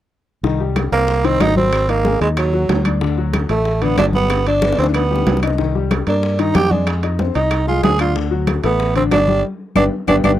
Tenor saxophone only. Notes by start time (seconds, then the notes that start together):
0.93 A#3
1.25 C4
1.41 D#4
1.57 C4
1.89 A#3
2.21 G#3
2.38 F#3
3.50 A3
3.82 B3
3.98 D4
4.15 B3
4.47 D4
4.79 C4
4.95 B3
6.08 D4
6.40 D#4
6.55 G4
6.71 D4
7.35 D#4
7.68 F4
7.84 G#4
8.00 F4
8.64 B3
8.96 C4
9.12 D4
9.76 D4
10.08 D4
10.24 D4